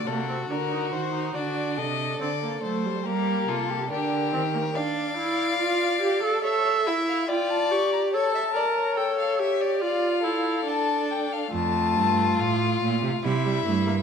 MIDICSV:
0, 0, Header, 1, 5, 480
1, 0, Start_track
1, 0, Tempo, 849858
1, 761, Time_signature, 4, 2, 24, 8
1, 7921, End_track
2, 0, Start_track
2, 0, Title_t, "Violin"
2, 0, Program_c, 0, 40
2, 40, Note_on_c, 0, 69, 68
2, 280, Note_off_c, 0, 69, 0
2, 283, Note_on_c, 0, 70, 71
2, 522, Note_on_c, 0, 72, 75
2, 530, Note_off_c, 0, 70, 0
2, 759, Note_off_c, 0, 72, 0
2, 763, Note_on_c, 0, 74, 71
2, 1007, Note_on_c, 0, 75, 76
2, 1015, Note_off_c, 0, 74, 0
2, 1244, Note_off_c, 0, 75, 0
2, 1248, Note_on_c, 0, 74, 69
2, 1481, Note_off_c, 0, 74, 0
2, 1484, Note_on_c, 0, 72, 75
2, 1727, Note_on_c, 0, 70, 81
2, 1735, Note_off_c, 0, 72, 0
2, 1968, Note_on_c, 0, 69, 81
2, 1976, Note_off_c, 0, 70, 0
2, 2205, Note_off_c, 0, 69, 0
2, 2210, Note_on_c, 0, 67, 83
2, 2684, Note_on_c, 0, 74, 82
2, 2692, Note_off_c, 0, 67, 0
2, 3635, Note_on_c, 0, 73, 72
2, 3644, Note_off_c, 0, 74, 0
2, 3751, Note_off_c, 0, 73, 0
2, 3755, Note_on_c, 0, 73, 66
2, 3800, Note_off_c, 0, 73, 0
2, 3880, Note_on_c, 0, 76, 68
2, 3925, Note_off_c, 0, 76, 0
2, 3996, Note_on_c, 0, 77, 64
2, 4111, Note_off_c, 0, 77, 0
2, 4114, Note_on_c, 0, 79, 68
2, 4237, Note_on_c, 0, 81, 72
2, 4245, Note_off_c, 0, 79, 0
2, 4355, Note_on_c, 0, 85, 73
2, 4364, Note_off_c, 0, 81, 0
2, 4474, Note_off_c, 0, 85, 0
2, 4478, Note_on_c, 0, 82, 61
2, 4523, Note_off_c, 0, 82, 0
2, 4595, Note_on_c, 0, 81, 72
2, 5059, Note_off_c, 0, 81, 0
2, 5067, Note_on_c, 0, 79, 63
2, 5184, Note_off_c, 0, 79, 0
2, 5189, Note_on_c, 0, 77, 64
2, 5304, Note_off_c, 0, 77, 0
2, 5308, Note_on_c, 0, 76, 64
2, 5429, Note_on_c, 0, 74, 67
2, 5438, Note_off_c, 0, 76, 0
2, 5544, Note_off_c, 0, 74, 0
2, 5547, Note_on_c, 0, 77, 75
2, 6030, Note_on_c, 0, 81, 68
2, 6039, Note_off_c, 0, 77, 0
2, 6273, Note_on_c, 0, 79, 67
2, 6282, Note_off_c, 0, 81, 0
2, 6394, Note_on_c, 0, 77, 63
2, 6402, Note_off_c, 0, 79, 0
2, 6513, Note_off_c, 0, 77, 0
2, 6517, Note_on_c, 0, 81, 82
2, 7001, Note_on_c, 0, 77, 75
2, 7009, Note_off_c, 0, 81, 0
2, 7475, Note_off_c, 0, 77, 0
2, 7479, Note_on_c, 0, 76, 78
2, 7921, Note_off_c, 0, 76, 0
2, 7921, End_track
3, 0, Start_track
3, 0, Title_t, "Violin"
3, 0, Program_c, 1, 40
3, 43, Note_on_c, 1, 66, 65
3, 749, Note_off_c, 1, 66, 0
3, 761, Note_on_c, 1, 66, 62
3, 1004, Note_on_c, 1, 69, 61
3, 1012, Note_off_c, 1, 66, 0
3, 1725, Note_off_c, 1, 69, 0
3, 1728, Note_on_c, 1, 67, 65
3, 1968, Note_on_c, 1, 65, 63
3, 1977, Note_off_c, 1, 67, 0
3, 2090, Note_on_c, 1, 67, 59
3, 2098, Note_off_c, 1, 65, 0
3, 2207, Note_off_c, 1, 67, 0
3, 2210, Note_on_c, 1, 70, 67
3, 2684, Note_on_c, 1, 77, 85
3, 2693, Note_off_c, 1, 70, 0
3, 3636, Note_off_c, 1, 77, 0
3, 3640, Note_on_c, 1, 76, 79
3, 4116, Note_on_c, 1, 74, 82
3, 4124, Note_off_c, 1, 76, 0
3, 4590, Note_off_c, 1, 74, 0
3, 4594, Note_on_c, 1, 73, 73
3, 4710, Note_off_c, 1, 73, 0
3, 4716, Note_on_c, 1, 76, 65
3, 4761, Note_off_c, 1, 76, 0
3, 4833, Note_on_c, 1, 74, 63
3, 4879, Note_off_c, 1, 74, 0
3, 4953, Note_on_c, 1, 73, 72
3, 5534, Note_off_c, 1, 73, 0
3, 5546, Note_on_c, 1, 74, 72
3, 5779, Note_off_c, 1, 74, 0
3, 5786, Note_on_c, 1, 69, 73
3, 6497, Note_off_c, 1, 69, 0
3, 6511, Note_on_c, 1, 65, 84
3, 7479, Note_on_c, 1, 64, 73
3, 7487, Note_off_c, 1, 65, 0
3, 7921, Note_off_c, 1, 64, 0
3, 7921, End_track
4, 0, Start_track
4, 0, Title_t, "Viola"
4, 0, Program_c, 2, 41
4, 42, Note_on_c, 2, 58, 60
4, 158, Note_off_c, 2, 58, 0
4, 164, Note_on_c, 2, 60, 54
4, 209, Note_off_c, 2, 60, 0
4, 284, Note_on_c, 2, 62, 58
4, 330, Note_off_c, 2, 62, 0
4, 405, Note_on_c, 2, 63, 58
4, 520, Note_off_c, 2, 63, 0
4, 524, Note_on_c, 2, 66, 55
4, 640, Note_off_c, 2, 66, 0
4, 644, Note_on_c, 2, 63, 60
4, 766, Note_on_c, 2, 62, 69
4, 774, Note_off_c, 2, 63, 0
4, 1245, Note_off_c, 2, 62, 0
4, 1249, Note_on_c, 2, 60, 57
4, 1294, Note_off_c, 2, 60, 0
4, 1369, Note_on_c, 2, 58, 57
4, 1485, Note_off_c, 2, 58, 0
4, 1489, Note_on_c, 2, 57, 61
4, 1609, Note_on_c, 2, 55, 56
4, 1618, Note_off_c, 2, 57, 0
4, 1725, Note_off_c, 2, 55, 0
4, 1728, Note_on_c, 2, 58, 71
4, 2196, Note_off_c, 2, 58, 0
4, 2207, Note_on_c, 2, 62, 64
4, 2439, Note_off_c, 2, 62, 0
4, 2447, Note_on_c, 2, 60, 63
4, 2493, Note_off_c, 2, 60, 0
4, 2565, Note_on_c, 2, 58, 61
4, 2610, Note_off_c, 2, 58, 0
4, 2682, Note_on_c, 2, 62, 79
4, 2917, Note_off_c, 2, 62, 0
4, 2923, Note_on_c, 2, 64, 81
4, 3155, Note_off_c, 2, 64, 0
4, 3158, Note_on_c, 2, 65, 78
4, 3393, Note_off_c, 2, 65, 0
4, 3398, Note_on_c, 2, 67, 86
4, 3515, Note_off_c, 2, 67, 0
4, 3521, Note_on_c, 2, 69, 81
4, 3636, Note_off_c, 2, 69, 0
4, 3640, Note_on_c, 2, 69, 94
4, 3880, Note_on_c, 2, 64, 89
4, 3888, Note_off_c, 2, 69, 0
4, 4117, Note_off_c, 2, 64, 0
4, 4119, Note_on_c, 2, 65, 86
4, 4356, Note_on_c, 2, 67, 80
4, 4364, Note_off_c, 2, 65, 0
4, 4596, Note_on_c, 2, 69, 91
4, 4605, Note_off_c, 2, 67, 0
4, 4828, Note_off_c, 2, 69, 0
4, 4831, Note_on_c, 2, 70, 84
4, 5069, Note_on_c, 2, 69, 76
4, 5077, Note_off_c, 2, 70, 0
4, 5306, Note_on_c, 2, 67, 81
4, 5315, Note_off_c, 2, 69, 0
4, 5544, Note_on_c, 2, 65, 89
4, 5552, Note_off_c, 2, 67, 0
4, 5783, Note_on_c, 2, 64, 85
4, 5792, Note_off_c, 2, 65, 0
4, 6018, Note_off_c, 2, 64, 0
4, 6021, Note_on_c, 2, 62, 76
4, 6499, Note_off_c, 2, 62, 0
4, 6509, Note_on_c, 2, 57, 74
4, 7455, Note_off_c, 2, 57, 0
4, 7475, Note_on_c, 2, 55, 74
4, 7521, Note_off_c, 2, 55, 0
4, 7595, Note_on_c, 2, 55, 71
4, 7709, Note_off_c, 2, 55, 0
4, 7712, Note_on_c, 2, 57, 71
4, 7758, Note_off_c, 2, 57, 0
4, 7831, Note_on_c, 2, 58, 70
4, 7877, Note_off_c, 2, 58, 0
4, 7921, End_track
5, 0, Start_track
5, 0, Title_t, "Cello"
5, 0, Program_c, 3, 42
5, 39, Note_on_c, 3, 48, 58
5, 275, Note_off_c, 3, 48, 0
5, 279, Note_on_c, 3, 50, 65
5, 518, Note_on_c, 3, 51, 61
5, 526, Note_off_c, 3, 50, 0
5, 757, Note_off_c, 3, 51, 0
5, 760, Note_on_c, 3, 50, 63
5, 1003, Note_on_c, 3, 48, 63
5, 1011, Note_off_c, 3, 50, 0
5, 1240, Note_off_c, 3, 48, 0
5, 1244, Note_on_c, 3, 50, 62
5, 1480, Note_off_c, 3, 50, 0
5, 1486, Note_on_c, 3, 54, 63
5, 1721, Note_off_c, 3, 54, 0
5, 1726, Note_on_c, 3, 55, 70
5, 1960, Note_off_c, 3, 55, 0
5, 1964, Note_on_c, 3, 48, 60
5, 2204, Note_on_c, 3, 50, 72
5, 2213, Note_off_c, 3, 48, 0
5, 2441, Note_on_c, 3, 51, 66
5, 2450, Note_off_c, 3, 50, 0
5, 2682, Note_off_c, 3, 51, 0
5, 6509, Note_on_c, 3, 41, 86
5, 6755, Note_on_c, 3, 43, 89
5, 6763, Note_off_c, 3, 41, 0
5, 6993, Note_off_c, 3, 43, 0
5, 6997, Note_on_c, 3, 45, 78
5, 7233, Note_off_c, 3, 45, 0
5, 7237, Note_on_c, 3, 46, 87
5, 7355, Note_off_c, 3, 46, 0
5, 7358, Note_on_c, 3, 48, 81
5, 7403, Note_off_c, 3, 48, 0
5, 7477, Note_on_c, 3, 48, 91
5, 7712, Note_off_c, 3, 48, 0
5, 7715, Note_on_c, 3, 43, 83
5, 7921, Note_off_c, 3, 43, 0
5, 7921, End_track
0, 0, End_of_file